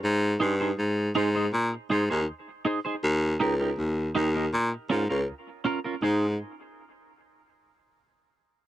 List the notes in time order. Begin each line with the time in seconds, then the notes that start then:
0.04 G#2
0.40 G2 D#4 G#4 C5
0.60 D#4 G#4 C5
0.78 G#2
1.15 G#2 D#4 G#4 C5
1.35 D#4 G#4 C5
1.53 A#2
1.90 G#2 D#4 G#4 C5
2.10 D#2 D#4 G#4 C5
2.65 D#4 G#4 C5
2.85 D#4 G#4 C5
3.03 D#2
3.40 C#2 D#4 G4 A#4
3.60 D#4 G4 A#4
3.78 D#2
4.15 D#2 D#4 G4 A#4
4.34 D#4 G4 A#4
4.53 A#2
4.90 G#2 C#4 F4 A#4
5.09 C#2 C#4 F4 A#4
5.64 C#4 F4 A#4
5.84 C#4 F4 A#4
6.02 G#2 D#4 G#4 C5